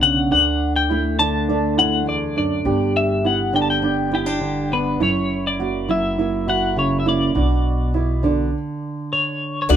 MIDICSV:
0, 0, Header, 1, 6, 480
1, 0, Start_track
1, 0, Tempo, 587084
1, 253, Time_signature, 4, 2, 24, 8
1, 7984, End_track
2, 0, Start_track
2, 0, Title_t, "Clean electric guitar"
2, 0, Program_c, 0, 27
2, 23, Note_on_c, 0, 78, 76
2, 252, Note_off_c, 0, 78, 0
2, 262, Note_on_c, 0, 78, 85
2, 593, Note_off_c, 0, 78, 0
2, 625, Note_on_c, 0, 79, 79
2, 972, Note_off_c, 0, 79, 0
2, 975, Note_on_c, 0, 81, 83
2, 1459, Note_off_c, 0, 81, 0
2, 1462, Note_on_c, 0, 78, 76
2, 1682, Note_off_c, 0, 78, 0
2, 1706, Note_on_c, 0, 74, 69
2, 1934, Note_off_c, 0, 74, 0
2, 1944, Note_on_c, 0, 74, 77
2, 2387, Note_off_c, 0, 74, 0
2, 2425, Note_on_c, 0, 76, 75
2, 2667, Note_off_c, 0, 76, 0
2, 2668, Note_on_c, 0, 78, 76
2, 2885, Note_off_c, 0, 78, 0
2, 2909, Note_on_c, 0, 79, 77
2, 2954, Note_off_c, 0, 79, 0
2, 2958, Note_on_c, 0, 81, 68
2, 3012, Note_off_c, 0, 81, 0
2, 3026, Note_on_c, 0, 79, 80
2, 3392, Note_on_c, 0, 67, 75
2, 3394, Note_off_c, 0, 79, 0
2, 3869, Note_on_c, 0, 71, 75
2, 3877, Note_off_c, 0, 67, 0
2, 4107, Note_off_c, 0, 71, 0
2, 4110, Note_on_c, 0, 73, 86
2, 4470, Note_off_c, 0, 73, 0
2, 4473, Note_on_c, 0, 74, 70
2, 4830, Note_on_c, 0, 76, 79
2, 4834, Note_off_c, 0, 74, 0
2, 5308, Note_off_c, 0, 76, 0
2, 5311, Note_on_c, 0, 78, 69
2, 5547, Note_off_c, 0, 78, 0
2, 5550, Note_on_c, 0, 73, 71
2, 5717, Note_off_c, 0, 73, 0
2, 5720, Note_on_c, 0, 76, 49
2, 5776, Note_off_c, 0, 76, 0
2, 5793, Note_on_c, 0, 74, 66
2, 7428, Note_off_c, 0, 74, 0
2, 7463, Note_on_c, 0, 73, 60
2, 7850, Note_off_c, 0, 73, 0
2, 7865, Note_on_c, 0, 73, 52
2, 7926, Note_off_c, 0, 73, 0
2, 7934, Note_on_c, 0, 74, 83
2, 7984, Note_off_c, 0, 74, 0
2, 7984, End_track
3, 0, Start_track
3, 0, Title_t, "Upright piano"
3, 0, Program_c, 1, 0
3, 253, Note_on_c, 1, 62, 65
3, 724, Note_off_c, 1, 62, 0
3, 734, Note_on_c, 1, 64, 64
3, 969, Note_off_c, 1, 64, 0
3, 977, Note_on_c, 1, 62, 63
3, 1201, Note_off_c, 1, 62, 0
3, 1213, Note_on_c, 1, 62, 70
3, 1449, Note_off_c, 1, 62, 0
3, 1450, Note_on_c, 1, 64, 62
3, 1923, Note_off_c, 1, 64, 0
3, 1932, Note_on_c, 1, 62, 61
3, 2160, Note_off_c, 1, 62, 0
3, 2172, Note_on_c, 1, 62, 70
3, 2644, Note_off_c, 1, 62, 0
3, 2653, Note_on_c, 1, 64, 58
3, 2889, Note_off_c, 1, 64, 0
3, 2896, Note_on_c, 1, 62, 62
3, 3125, Note_off_c, 1, 62, 0
3, 3137, Note_on_c, 1, 62, 74
3, 3371, Note_off_c, 1, 62, 0
3, 3374, Note_on_c, 1, 64, 59
3, 3845, Note_off_c, 1, 64, 0
3, 3852, Note_on_c, 1, 62, 61
3, 4089, Note_off_c, 1, 62, 0
3, 4089, Note_on_c, 1, 64, 78
3, 4562, Note_off_c, 1, 64, 0
3, 4574, Note_on_c, 1, 66, 65
3, 4810, Note_off_c, 1, 66, 0
3, 4813, Note_on_c, 1, 64, 63
3, 5045, Note_off_c, 1, 64, 0
3, 5057, Note_on_c, 1, 64, 66
3, 5290, Note_on_c, 1, 66, 62
3, 5291, Note_off_c, 1, 64, 0
3, 5762, Note_off_c, 1, 66, 0
3, 5771, Note_on_c, 1, 64, 61
3, 6008, Note_off_c, 1, 64, 0
3, 6013, Note_on_c, 1, 62, 69
3, 6483, Note_off_c, 1, 62, 0
3, 6496, Note_on_c, 1, 64, 64
3, 6729, Note_off_c, 1, 64, 0
3, 6732, Note_on_c, 1, 62, 63
3, 6967, Note_off_c, 1, 62, 0
3, 7929, Note_on_c, 1, 62, 76
3, 7984, Note_off_c, 1, 62, 0
3, 7984, End_track
4, 0, Start_track
4, 0, Title_t, "Steel-string acoustic guitar"
4, 0, Program_c, 2, 25
4, 0, Note_on_c, 2, 50, 48
4, 0, Note_on_c, 2, 59, 50
4, 0, Note_on_c, 2, 62, 50
4, 0, Note_on_c, 2, 66, 58
4, 13, Note_on_c, 2, 49, 52
4, 220, Note_off_c, 2, 66, 0
4, 227, Note_off_c, 2, 59, 0
4, 254, Note_off_c, 2, 49, 0
4, 255, Note_off_c, 2, 62, 0
4, 255, Note_on_c, 2, 38, 62
4, 258, Note_on_c, 2, 62, 54
4, 742, Note_on_c, 2, 57, 50
4, 968, Note_off_c, 2, 50, 0
4, 978, Note_off_c, 2, 62, 0
4, 978, Note_on_c, 2, 50, 50
4, 981, Note_on_c, 2, 62, 51
4, 1212, Note_off_c, 2, 57, 0
4, 1222, Note_on_c, 2, 57, 54
4, 1453, Note_off_c, 2, 62, 0
4, 1463, Note_on_c, 2, 62, 57
4, 1681, Note_off_c, 2, 38, 0
4, 1685, Note_on_c, 2, 40, 50
4, 1927, Note_off_c, 2, 40, 0
4, 1930, Note_on_c, 2, 42, 53
4, 2150, Note_off_c, 2, 57, 0
4, 2150, Note_off_c, 2, 62, 0
4, 2162, Note_off_c, 2, 42, 0
4, 2166, Note_on_c, 2, 43, 65
4, 2171, Note_on_c, 2, 67, 58
4, 2655, Note_on_c, 2, 59, 49
4, 2876, Note_off_c, 2, 50, 0
4, 2885, Note_on_c, 2, 50, 50
4, 2890, Note_on_c, 2, 62, 51
4, 3114, Note_off_c, 2, 59, 0
4, 3124, Note_on_c, 2, 59, 54
4, 3354, Note_off_c, 2, 59, 0
4, 3360, Note_off_c, 2, 62, 0
4, 3363, Note_on_c, 2, 59, 51
4, 3484, Note_off_c, 2, 59, 0
4, 3484, Note_on_c, 2, 62, 39
4, 3590, Note_off_c, 2, 50, 0
4, 3600, Note_on_c, 2, 50, 55
4, 3863, Note_on_c, 2, 59, 52
4, 4059, Note_off_c, 2, 50, 0
4, 4062, Note_off_c, 2, 43, 0
4, 4064, Note_off_c, 2, 67, 0
4, 4070, Note_off_c, 2, 59, 0
4, 4089, Note_off_c, 2, 62, 0
4, 4090, Note_on_c, 2, 42, 66
4, 4096, Note_on_c, 2, 64, 56
4, 4577, Note_on_c, 2, 58, 49
4, 4807, Note_off_c, 2, 64, 0
4, 4811, Note_on_c, 2, 54, 53
4, 4817, Note_on_c, 2, 64, 51
4, 5051, Note_off_c, 2, 58, 0
4, 5061, Note_on_c, 2, 58, 50
4, 5287, Note_off_c, 2, 64, 0
4, 5296, Note_on_c, 2, 64, 58
4, 5531, Note_on_c, 2, 49, 53
4, 5762, Note_off_c, 2, 58, 0
4, 5772, Note_on_c, 2, 58, 53
4, 5982, Note_off_c, 2, 42, 0
4, 5983, Note_off_c, 2, 49, 0
4, 5983, Note_off_c, 2, 54, 0
4, 5984, Note_off_c, 2, 58, 0
4, 6007, Note_off_c, 2, 64, 0
4, 6007, Note_on_c, 2, 47, 63
4, 6011, Note_on_c, 2, 66, 55
4, 6491, Note_on_c, 2, 59, 48
4, 6728, Note_on_c, 2, 50, 51
4, 6730, Note_off_c, 2, 47, 0
4, 6736, Note_on_c, 2, 62, 48
4, 6941, Note_off_c, 2, 66, 0
4, 6942, Note_off_c, 2, 59, 0
4, 6945, Note_off_c, 2, 62, 0
4, 7984, Note_off_c, 2, 50, 0
4, 7984, End_track
5, 0, Start_track
5, 0, Title_t, "Twelve-string acoustic guitar"
5, 0, Program_c, 3, 25
5, 7921, Note_on_c, 3, 50, 73
5, 7924, Note_on_c, 3, 57, 77
5, 7925, Note_on_c, 3, 54, 74
5, 7928, Note_on_c, 3, 62, 75
5, 7930, Note_on_c, 3, 66, 77
5, 7984, Note_off_c, 3, 50, 0
5, 7984, Note_off_c, 3, 54, 0
5, 7984, Note_off_c, 3, 57, 0
5, 7984, Note_off_c, 3, 62, 0
5, 7984, Note_off_c, 3, 66, 0
5, 7984, End_track
6, 0, Start_track
6, 0, Title_t, "Upright bass"
6, 0, Program_c, 4, 32
6, 0, Note_on_c, 4, 35, 65
6, 220, Note_off_c, 4, 35, 0
6, 252, Note_on_c, 4, 38, 60
6, 2141, Note_off_c, 4, 38, 0
6, 2168, Note_on_c, 4, 31, 65
6, 4059, Note_off_c, 4, 31, 0
6, 4090, Note_on_c, 4, 30, 61
6, 5978, Note_off_c, 4, 30, 0
6, 6014, Note_on_c, 4, 35, 61
6, 6953, Note_off_c, 4, 35, 0
6, 7929, Note_on_c, 4, 38, 83
6, 7984, Note_off_c, 4, 38, 0
6, 7984, End_track
0, 0, End_of_file